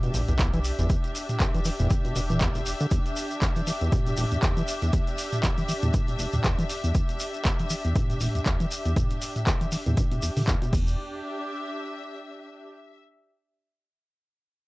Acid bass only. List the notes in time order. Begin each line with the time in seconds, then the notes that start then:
0.03 B2
0.14 E1
0.28 E2
0.39 E2
0.54 E3
0.79 E2
0.90 E2
1.40 E2
1.54 E3
1.65 E3
1.80 E2
1.90 G2
2.05 B2
2.16 B2
2.30 E3
2.41 E2
2.55 E1
2.81 D3
2.91 E2
3.42 E2
3.56 E3
3.67 E3
3.81 E2
3.92 G2
4.07 B2
4.17 E1
4.32 E2
4.43 E2
4.57 E3
4.82 E2
5.43 E2
5.58 E3
5.69 E3
5.83 E2
5.94 G2
6.08 B2
6.19 E1
6.33 E2
6.44 E2
6.59 E3
6.84 E2
7.45 E2
7.60 E3
7.70 E3
7.85 E2
7.96 G2
8.10 B2
8.21 E1
8.35 E2
8.46 E2
8.60 E3
8.85 E2
8.96 E2
9.47 E2
9.61 E3
9.72 E3
9.86 E2
9.97 G2
10.12 B2
10.23 E2
10.37 D3
10.48 E2
10.62 B2
10.73 E2